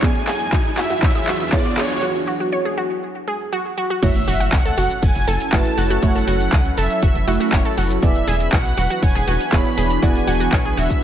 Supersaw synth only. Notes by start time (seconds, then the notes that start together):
0.02 G#5
0.78 E5
1.53 D5
1.78 C#5
4.03 E5
4.52 F#5
5.02 G#5
5.52 A5
6.03 F#5
6.77 E5
8.03 E5
8.53 F#5
9.03 G#5
9.53 B5
10.03 G#5
10.78 E5